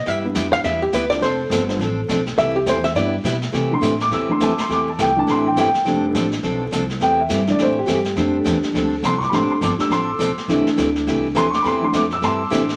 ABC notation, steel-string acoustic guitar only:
X:1
M:4/4
L:1/8
Q:"Swing" 1/4=207
K:C
V:1 name="Steel-string acoustic guitar"
[G,B,EG] z [G,B,EG] z [G,B,EG] z [G,B,EG] z | [F,CDA] z [F,CDA] z [F,CDA] z [F,CDA] z | [C,E,A,EG] z [C,E,A,EG] z [G,B,EG] z [G,B,EG] z | [C,E,A,EG] z [C,E,A,EG] z [C,E,A,EG] z [C,E,A,EG] z |
[C,E,A,EG] z [C,E,A,EG] z [C,E,A,EG] z [C,E,A,EG] z | [F,CDA] z [F,CDA] z [F,CDA] z [F,CDA] z | [C,E,A,EG] z [C,E,A,EG] z [C,E,A,EG] z [C,E,A,EG] z | [F,CDA] z [F,CDA] z [F,CDA] z [F,CDA] z |
[F,CDA] z [F,CDA] z [F,CDA] z [F,CDA] z | [C,E,A,EG] z [C,E,A,EG] z [C,E,A,EG] z [C,E,A,EG] z | [C,E,A,EG] z [C,E,A,EG] z [C,E,A,EG] z [C,E,A,EG] z |]